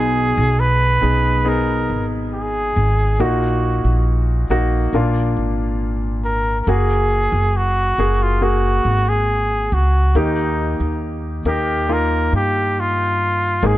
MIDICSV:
0, 0, Header, 1, 4, 480
1, 0, Start_track
1, 0, Key_signature, -6, "minor"
1, 0, Tempo, 869565
1, 1765, Time_signature, 4, 2, 24, 8
1, 7605, End_track
2, 0, Start_track
2, 0, Title_t, "Flugelhorn"
2, 0, Program_c, 0, 56
2, 0, Note_on_c, 0, 68, 85
2, 331, Note_on_c, 0, 71, 100
2, 340, Note_off_c, 0, 68, 0
2, 819, Note_on_c, 0, 70, 78
2, 828, Note_off_c, 0, 71, 0
2, 1143, Note_off_c, 0, 70, 0
2, 1291, Note_on_c, 0, 68, 69
2, 1775, Note_on_c, 0, 66, 63
2, 1783, Note_off_c, 0, 68, 0
2, 2250, Note_off_c, 0, 66, 0
2, 3450, Note_on_c, 0, 70, 73
2, 3650, Note_off_c, 0, 70, 0
2, 3650, Note_on_c, 0, 70, 55
2, 3691, Note_on_c, 0, 68, 76
2, 3699, Note_off_c, 0, 70, 0
2, 4177, Note_on_c, 0, 66, 84
2, 4186, Note_off_c, 0, 68, 0
2, 4542, Note_on_c, 0, 65, 68
2, 4550, Note_off_c, 0, 66, 0
2, 4655, Note_on_c, 0, 66, 78
2, 4663, Note_off_c, 0, 65, 0
2, 5016, Note_on_c, 0, 68, 80
2, 5024, Note_off_c, 0, 66, 0
2, 5376, Note_on_c, 0, 66, 65
2, 5384, Note_off_c, 0, 68, 0
2, 5610, Note_off_c, 0, 66, 0
2, 5618, Note_on_c, 0, 63, 60
2, 6069, Note_off_c, 0, 63, 0
2, 6339, Note_on_c, 0, 67, 76
2, 6585, Note_on_c, 0, 70, 85
2, 6593, Note_off_c, 0, 67, 0
2, 6815, Note_off_c, 0, 70, 0
2, 6822, Note_on_c, 0, 67, 80
2, 7067, Note_on_c, 0, 65, 74
2, 7075, Note_off_c, 0, 67, 0
2, 7544, Note_on_c, 0, 68, 88
2, 7553, Note_off_c, 0, 65, 0
2, 7605, Note_off_c, 0, 68, 0
2, 7605, End_track
3, 0, Start_track
3, 0, Title_t, "Grand piano"
3, 0, Program_c, 1, 0
3, 0, Control_c, 1, 64, 127
3, 0, Note_on_c, 1, 47, 49
3, 0, Note_on_c, 1, 59, 53
3, 0, Note_on_c, 1, 63, 53
3, 0, Note_on_c, 1, 68, 64
3, 529, Note_off_c, 1, 59, 0
3, 531, Note_off_c, 1, 63, 0
3, 533, Note_off_c, 1, 68, 0
3, 544, Note_off_c, 1, 47, 0
3, 559, Note_on_c, 1, 59, 48
3, 563, Note_on_c, 1, 63, 48
3, 565, Note_on_c, 1, 68, 55
3, 790, Note_off_c, 1, 59, 0
3, 792, Note_off_c, 1, 63, 0
3, 793, Note_off_c, 1, 68, 0
3, 798, Note_on_c, 1, 59, 54
3, 800, Note_on_c, 1, 63, 51
3, 801, Note_on_c, 1, 68, 59
3, 1713, Note_off_c, 1, 59, 0
3, 1714, Note_off_c, 1, 63, 0
3, 1715, Note_off_c, 1, 68, 0
3, 1763, Note_on_c, 1, 58, 60
3, 1767, Note_on_c, 1, 46, 46
3, 1768, Note_on_c, 1, 63, 55
3, 1768, Note_on_c, 1, 66, 61
3, 1772, Control_c, 1, 64, 0
3, 1880, Control_c, 1, 64, 127
3, 2448, Note_off_c, 1, 58, 0
3, 2450, Note_off_c, 1, 63, 0
3, 2450, Note_off_c, 1, 66, 0
3, 2464, Note_off_c, 1, 46, 0
3, 2486, Note_on_c, 1, 58, 59
3, 2488, Note_on_c, 1, 63, 56
3, 2489, Note_on_c, 1, 66, 72
3, 2713, Note_off_c, 1, 58, 0
3, 2714, Note_off_c, 1, 63, 0
3, 2715, Note_off_c, 1, 66, 0
3, 2727, Note_on_c, 1, 58, 62
3, 2729, Note_on_c, 1, 46, 55
3, 2729, Note_on_c, 1, 62, 59
3, 2731, Control_c, 1, 64, 0
3, 2734, Note_on_c, 1, 65, 68
3, 2821, Control_c, 1, 64, 127
3, 3425, Note_off_c, 1, 46, 0
3, 3638, Note_off_c, 1, 58, 0
3, 3639, Note_off_c, 1, 62, 0
3, 3641, Note_off_c, 1, 65, 0
3, 3686, Note_on_c, 1, 58, 52
3, 3690, Note_on_c, 1, 66, 53
3, 3691, Note_on_c, 1, 68, 61
3, 3692, Control_c, 1, 64, 0
3, 3791, Control_c, 1, 64, 127
3, 4369, Note_off_c, 1, 58, 0
3, 4371, Note_off_c, 1, 66, 0
3, 4372, Note_off_c, 1, 68, 0
3, 4409, Note_on_c, 1, 58, 48
3, 4412, Note_on_c, 1, 66, 45
3, 4413, Note_on_c, 1, 68, 59
3, 4635, Note_off_c, 1, 58, 0
3, 4636, Note_off_c, 1, 66, 0
3, 4637, Note_off_c, 1, 68, 0
3, 4644, Note_on_c, 1, 58, 52
3, 4645, Note_on_c, 1, 66, 46
3, 4648, Note_on_c, 1, 68, 57
3, 5557, Note_off_c, 1, 58, 0
3, 5557, Note_off_c, 1, 66, 0
3, 5558, Note_off_c, 1, 68, 0
3, 5605, Note_on_c, 1, 58, 57
3, 5608, Note_on_c, 1, 51, 47
3, 5609, Note_on_c, 1, 63, 52
3, 5611, Note_on_c, 1, 67, 64
3, 5613, Control_c, 1, 64, 0
3, 5699, Control_c, 1, 64, 127
3, 6289, Note_off_c, 1, 58, 0
3, 6291, Note_off_c, 1, 63, 0
3, 6292, Note_off_c, 1, 67, 0
3, 6305, Note_off_c, 1, 51, 0
3, 6325, Note_on_c, 1, 58, 53
3, 6330, Note_on_c, 1, 63, 53
3, 6331, Note_on_c, 1, 70, 58
3, 6553, Note_off_c, 1, 58, 0
3, 6555, Note_off_c, 1, 63, 0
3, 6556, Note_off_c, 1, 70, 0
3, 6562, Note_on_c, 1, 58, 52
3, 6564, Note_on_c, 1, 63, 51
3, 6565, Note_on_c, 1, 65, 63
3, 7475, Note_off_c, 1, 58, 0
3, 7476, Note_off_c, 1, 63, 0
3, 7477, Note_off_c, 1, 65, 0
3, 7523, Note_on_c, 1, 58, 59
3, 7526, Note_on_c, 1, 63, 52
3, 7527, Note_on_c, 1, 44, 45
3, 7528, Note_on_c, 1, 68, 63
3, 7532, Control_c, 1, 64, 0
3, 7605, Note_off_c, 1, 44, 0
3, 7605, Note_off_c, 1, 58, 0
3, 7605, Note_off_c, 1, 63, 0
3, 7605, Note_off_c, 1, 68, 0
3, 7605, End_track
4, 0, Start_track
4, 0, Title_t, "Upright bass"
4, 0, Program_c, 2, 32
4, 0, Note_on_c, 2, 35, 77
4, 184, Note_off_c, 2, 35, 0
4, 207, Note_on_c, 2, 35, 82
4, 544, Note_off_c, 2, 35, 0
4, 570, Note_on_c, 2, 35, 75
4, 1025, Note_off_c, 2, 35, 0
4, 1048, Note_on_c, 2, 32, 61
4, 1504, Note_off_c, 2, 32, 0
4, 1525, Note_on_c, 2, 32, 74
4, 1748, Note_off_c, 2, 32, 0
4, 1765, Note_on_c, 2, 34, 76
4, 2103, Note_off_c, 2, 34, 0
4, 2123, Note_on_c, 2, 34, 66
4, 2462, Note_off_c, 2, 34, 0
4, 2482, Note_on_c, 2, 34, 65
4, 2706, Note_off_c, 2, 34, 0
4, 2720, Note_on_c, 2, 34, 72
4, 2945, Note_off_c, 2, 34, 0
4, 2963, Note_on_c, 2, 32, 60
4, 3662, Note_off_c, 2, 32, 0
4, 3682, Note_on_c, 2, 30, 74
4, 4021, Note_off_c, 2, 30, 0
4, 4042, Note_on_c, 2, 30, 72
4, 4381, Note_off_c, 2, 30, 0
4, 4407, Note_on_c, 2, 30, 70
4, 4864, Note_off_c, 2, 30, 0
4, 4885, Note_on_c, 2, 32, 67
4, 5343, Note_off_c, 2, 32, 0
4, 5366, Note_on_c, 2, 37, 72
4, 5589, Note_off_c, 2, 37, 0
4, 5603, Note_on_c, 2, 39, 78
4, 5942, Note_off_c, 2, 39, 0
4, 5963, Note_on_c, 2, 39, 67
4, 6302, Note_off_c, 2, 39, 0
4, 6322, Note_on_c, 2, 39, 76
4, 6781, Note_off_c, 2, 39, 0
4, 6805, Note_on_c, 2, 43, 57
4, 7503, Note_off_c, 2, 43, 0
4, 7522, Note_on_c, 2, 32, 77
4, 7605, Note_off_c, 2, 32, 0
4, 7605, End_track
0, 0, End_of_file